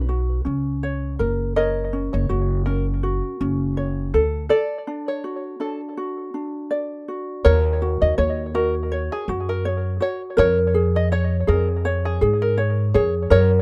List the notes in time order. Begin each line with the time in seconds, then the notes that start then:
Already playing: B1 F#4 B4 C#5
0.09 F#4
0.45 C#2 C#4
0.83 C#5
1.19 F#1 A#4
1.56 A#4 C#5 D#5
1.93 C#4
2.13 F#1 C#5
2.29 F#1 F#4
2.66 C#4 A#4
3.03 F#4
3.40 F#1 C#4
3.77 C#5
4.14 D2 A4
4.49 A4 D5
4.87 D4
5.08 C#5
5.24 F#4
5.60 D4 A4
5.97 F#4
6.34 D4
6.71 D5
7.08 F#4
7.45 D#2 A#4 C#5
7.82 F#4
8.02 D#2 D#5
8.18 D#2 C#5
8.55 F#4 A#4
8.92 C#5
9.12 G#4
9.28 F#2 F#4
9.49 A#4
9.65 C#5
10.01 F#4 C#5
10.37 F2 A#4 C#5
10.74 G#4
10.96 D#5
11.12 C#5
11.47 F2 G#4 A#4
11.85 C#5
12.05 G#4
12.21 G#2 G#4
12.42 A#4
12.58 C#5
12.94 F2 G#4 C#5
13.30 F#2 A#4 C#5